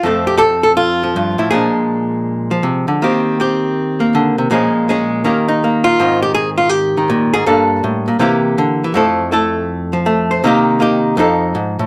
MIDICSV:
0, 0, Header, 1, 2, 480
1, 0, Start_track
1, 0, Tempo, 371058
1, 43, Time_signature, 4, 2, 24, 8
1, 15349, End_track
2, 0, Start_track
2, 0, Title_t, "Hollow-body jazz guitar"
2, 0, Program_c, 0, 26
2, 43, Note_on_c, 0, 41, 64
2, 61, Note_on_c, 0, 53, 43
2, 73, Note_on_c, 0, 57, 43
2, 84, Note_on_c, 0, 60, 40
2, 88, Note_on_c, 0, 69, 43
2, 345, Note_off_c, 0, 69, 0
2, 350, Note_on_c, 0, 67, 82
2, 469, Note_off_c, 0, 67, 0
2, 485, Note_on_c, 0, 67, 69
2, 496, Note_on_c, 0, 69, 97
2, 526, Note_off_c, 0, 67, 0
2, 804, Note_off_c, 0, 69, 0
2, 820, Note_on_c, 0, 69, 83
2, 926, Note_off_c, 0, 69, 0
2, 993, Note_on_c, 0, 65, 86
2, 1321, Note_off_c, 0, 53, 0
2, 1337, Note_on_c, 0, 53, 57
2, 1488, Note_off_c, 0, 41, 0
2, 1501, Note_on_c, 0, 43, 64
2, 1783, Note_off_c, 0, 43, 0
2, 1788, Note_on_c, 0, 45, 52
2, 1792, Note_off_c, 0, 60, 0
2, 1797, Note_on_c, 0, 64, 62
2, 1942, Note_off_c, 0, 65, 0
2, 1948, Note_on_c, 0, 68, 89
2, 1957, Note_off_c, 0, 53, 0
2, 1962, Note_off_c, 0, 45, 0
2, 1964, Note_off_c, 0, 64, 0
2, 1964, Note_on_c, 0, 46, 68
2, 1965, Note_off_c, 0, 57, 0
2, 1982, Note_on_c, 0, 53, 41
2, 1988, Note_on_c, 0, 56, 44
2, 1998, Note_on_c, 0, 62, 43
2, 3232, Note_off_c, 0, 53, 0
2, 3248, Note_on_c, 0, 53, 61
2, 3399, Note_off_c, 0, 46, 0
2, 3402, Note_off_c, 0, 68, 0
2, 3404, Note_on_c, 0, 48, 62
2, 3719, Note_off_c, 0, 48, 0
2, 3724, Note_on_c, 0, 50, 57
2, 3874, Note_off_c, 0, 53, 0
2, 3888, Note_off_c, 0, 62, 0
2, 3892, Note_off_c, 0, 50, 0
2, 3902, Note_off_c, 0, 56, 0
2, 3908, Note_on_c, 0, 51, 65
2, 3913, Note_on_c, 0, 58, 44
2, 3927, Note_on_c, 0, 60, 59
2, 3934, Note_on_c, 0, 67, 53
2, 4381, Note_off_c, 0, 60, 0
2, 4392, Note_off_c, 0, 67, 0
2, 4396, Note_on_c, 0, 60, 56
2, 4410, Note_on_c, 0, 67, 62
2, 5161, Note_off_c, 0, 58, 0
2, 5177, Note_on_c, 0, 58, 52
2, 5364, Note_on_c, 0, 50, 68
2, 5663, Note_off_c, 0, 50, 0
2, 5670, Note_on_c, 0, 48, 56
2, 5798, Note_off_c, 0, 58, 0
2, 5812, Note_off_c, 0, 67, 0
2, 5822, Note_off_c, 0, 51, 0
2, 5824, Note_off_c, 0, 48, 0
2, 5825, Note_off_c, 0, 60, 0
2, 5829, Note_on_c, 0, 46, 74
2, 5836, Note_on_c, 0, 53, 51
2, 5846, Note_on_c, 0, 56, 55
2, 5857, Note_on_c, 0, 61, 54
2, 5871, Note_on_c, 0, 68, 49
2, 6309, Note_off_c, 0, 56, 0
2, 6316, Note_off_c, 0, 61, 0
2, 6318, Note_off_c, 0, 68, 0
2, 6326, Note_on_c, 0, 56, 59
2, 6337, Note_on_c, 0, 61, 59
2, 6344, Note_on_c, 0, 68, 61
2, 6764, Note_off_c, 0, 53, 0
2, 6775, Note_off_c, 0, 61, 0
2, 6778, Note_off_c, 0, 68, 0
2, 6781, Note_off_c, 0, 46, 0
2, 6785, Note_on_c, 0, 51, 63
2, 6789, Note_off_c, 0, 56, 0
2, 6795, Note_on_c, 0, 58, 47
2, 6801, Note_on_c, 0, 61, 43
2, 6817, Note_on_c, 0, 67, 40
2, 7090, Note_off_c, 0, 61, 0
2, 7095, Note_on_c, 0, 63, 73
2, 7263, Note_off_c, 0, 58, 0
2, 7296, Note_on_c, 0, 58, 53
2, 7551, Note_off_c, 0, 67, 0
2, 7556, Note_on_c, 0, 65, 83
2, 7733, Note_off_c, 0, 58, 0
2, 7736, Note_off_c, 0, 63, 0
2, 7738, Note_off_c, 0, 51, 0
2, 7755, Note_on_c, 0, 44, 63
2, 7758, Note_on_c, 0, 51, 50
2, 7769, Note_on_c, 0, 60, 38
2, 7778, Note_on_c, 0, 63, 47
2, 8040, Note_off_c, 0, 65, 0
2, 8052, Note_on_c, 0, 67, 84
2, 8203, Note_off_c, 0, 67, 0
2, 8208, Note_on_c, 0, 68, 88
2, 8397, Note_off_c, 0, 68, 0
2, 8506, Note_on_c, 0, 65, 78
2, 8659, Note_off_c, 0, 65, 0
2, 8659, Note_on_c, 0, 67, 91
2, 9006, Note_off_c, 0, 51, 0
2, 9022, Note_on_c, 0, 51, 55
2, 9179, Note_on_c, 0, 46, 69
2, 9468, Note_off_c, 0, 67, 0
2, 9480, Note_off_c, 0, 44, 0
2, 9488, Note_off_c, 0, 46, 0
2, 9489, Note_on_c, 0, 68, 92
2, 9495, Note_on_c, 0, 44, 60
2, 9645, Note_off_c, 0, 60, 0
2, 9651, Note_off_c, 0, 44, 0
2, 9652, Note_off_c, 0, 63, 0
2, 9652, Note_off_c, 0, 68, 0
2, 9656, Note_on_c, 0, 43, 66
2, 9658, Note_off_c, 0, 51, 0
2, 9663, Note_on_c, 0, 69, 78
2, 9666, Note_on_c, 0, 55, 46
2, 9672, Note_on_c, 0, 58, 40
2, 9683, Note_on_c, 0, 62, 46
2, 10132, Note_off_c, 0, 43, 0
2, 10138, Note_on_c, 0, 45, 63
2, 10447, Note_off_c, 0, 45, 0
2, 10449, Note_on_c, 0, 46, 56
2, 10595, Note_off_c, 0, 46, 0
2, 10596, Note_off_c, 0, 55, 0
2, 10599, Note_off_c, 0, 58, 0
2, 10600, Note_on_c, 0, 48, 68
2, 10604, Note_off_c, 0, 62, 0
2, 10608, Note_on_c, 0, 52, 60
2, 10612, Note_off_c, 0, 69, 0
2, 10616, Note_on_c, 0, 58, 49
2, 10626, Note_on_c, 0, 64, 58
2, 10634, Note_on_c, 0, 67, 58
2, 11083, Note_off_c, 0, 48, 0
2, 11100, Note_on_c, 0, 50, 70
2, 11401, Note_off_c, 0, 52, 0
2, 11407, Note_off_c, 0, 50, 0
2, 11439, Note_on_c, 0, 52, 60
2, 11549, Note_off_c, 0, 58, 0
2, 11556, Note_off_c, 0, 64, 0
2, 11558, Note_off_c, 0, 67, 0
2, 11563, Note_on_c, 0, 41, 63
2, 11577, Note_off_c, 0, 52, 0
2, 11582, Note_on_c, 0, 53, 60
2, 11585, Note_on_c, 0, 57, 63
2, 11596, Note_on_c, 0, 64, 47
2, 11604, Note_on_c, 0, 69, 61
2, 12042, Note_off_c, 0, 57, 0
2, 12053, Note_off_c, 0, 64, 0
2, 12058, Note_off_c, 0, 69, 0
2, 12058, Note_on_c, 0, 57, 62
2, 12068, Note_on_c, 0, 64, 56
2, 12074, Note_on_c, 0, 69, 65
2, 12830, Note_off_c, 0, 53, 0
2, 12846, Note_on_c, 0, 53, 53
2, 12999, Note_off_c, 0, 57, 0
2, 13015, Note_on_c, 0, 57, 66
2, 13330, Note_off_c, 0, 69, 0
2, 13335, Note_on_c, 0, 72, 65
2, 13469, Note_off_c, 0, 53, 0
2, 13470, Note_off_c, 0, 57, 0
2, 13473, Note_off_c, 0, 72, 0
2, 13477, Note_off_c, 0, 64, 0
2, 13484, Note_off_c, 0, 41, 0
2, 13501, Note_on_c, 0, 48, 69
2, 13507, Note_on_c, 0, 51, 55
2, 13520, Note_on_c, 0, 58, 62
2, 13527, Note_on_c, 0, 63, 52
2, 13543, Note_on_c, 0, 67, 66
2, 13954, Note_off_c, 0, 58, 0
2, 13970, Note_on_c, 0, 58, 54
2, 13974, Note_off_c, 0, 63, 0
2, 13983, Note_off_c, 0, 67, 0
2, 13990, Note_on_c, 0, 63, 57
2, 13999, Note_on_c, 0, 67, 71
2, 14428, Note_off_c, 0, 58, 0
2, 14434, Note_off_c, 0, 48, 0
2, 14438, Note_off_c, 0, 63, 0
2, 14443, Note_off_c, 0, 67, 0
2, 14450, Note_on_c, 0, 41, 75
2, 14457, Note_off_c, 0, 51, 0
2, 14462, Note_on_c, 0, 53, 49
2, 14475, Note_on_c, 0, 63, 62
2, 14488, Note_on_c, 0, 69, 54
2, 14930, Note_off_c, 0, 41, 0
2, 14939, Note_on_c, 0, 44, 64
2, 15247, Note_off_c, 0, 44, 0
2, 15256, Note_on_c, 0, 45, 61
2, 15349, Note_off_c, 0, 45, 0
2, 15349, Note_off_c, 0, 53, 0
2, 15349, Note_off_c, 0, 63, 0
2, 15349, Note_off_c, 0, 69, 0
2, 15349, End_track
0, 0, End_of_file